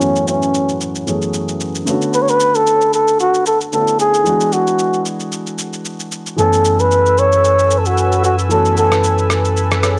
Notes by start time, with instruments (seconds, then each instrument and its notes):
Already playing: muted trumpet C#4
0.00 grand piano F#2 E3 A3 B3 C#4 F#4, shaker
0.16 shaker
0.28 muted trumpet C#4, shaker
0.42 shaker
0.54 shaker
0.69 shaker
0.81 shaker
0.95 shaker
1.07 grand piano F#2 E3 A3 B3 C#4 G#4, shaker
1.22 shaker
1.34 shaker
1.48 shaker
1.60 shaker
1.75 shaker
1.85 grand piano C#3 A3 B3 C#4, shaker
1.90 grand piano D3 F#4
2.02 shaker
2.14 muted trumpet B4, shaker
2.22 muted trumpet C#5
2.28 muted trumpet B4, shaker
2.40 shaker
2.55 muted trumpet A4, shaker
2.67 shaker
2.81 shaker
2.93 muted trumpet A4, shaker
3.08 shaker
3.20 muted trumpet F#4, shaker
3.34 shaker
3.46 muted trumpet A4, shaker
3.61 shaker
3.72 grand piano D3 A3 B3 C#4 D4, muted trumpet A4, shaker
3.81 grand piano E4
3.87 shaker
3.99 muted trumpet G#4, shaker
4.14 shaker
4.24 grand piano E3 G#3 B3 D4, shaker
4.29 grand piano F#4
4.41 shaker
4.52 muted trumpet F#4, shaker
4.67 shaker
4.79 shaker
4.94 shaker
5.05 shaker
5.20 shaker
5.32 shaker
5.47 shaker
5.58 shaker
5.73 shaker
5.85 shaker
6.00 shaker
6.12 shaker
6.26 shaker
6.36 sub bass F#2, grand piano E3 A3 B3 C#4, analog synth pad A4 B4 G#5 E6, muted trumpet A4, shaker
6.41 grand piano G#5
6.53 shaker
6.65 shaker
6.79 muted trumpet B4, shaker
6.91 shaker
7.06 shaker
7.18 muted trumpet C#5, shaker
7.32 shaker
7.44 shaker
7.59 shaker
7.71 shaker
7.79 muted trumpet A4
7.85 muted trumpet F#4, shaker
7.97 shaker
8.12 shaker
8.24 muted trumpet F#4, shaker
8.39 shaker
8.49 grand piano E3 A3 B3 C#4, muted trumpet A4, shaker
8.53 grand piano F#4
8.65 shaker
8.77 muted trumpet A4, shaker
8.92 cross-stick, shaker
9.04 shaker
9.18 shaker
9.30 cross-stick, shaker
9.45 shaker
9.57 shaker
9.71 cross-stick, shaker
9.83 grand piano G#4 C#5, cross-stick, shaker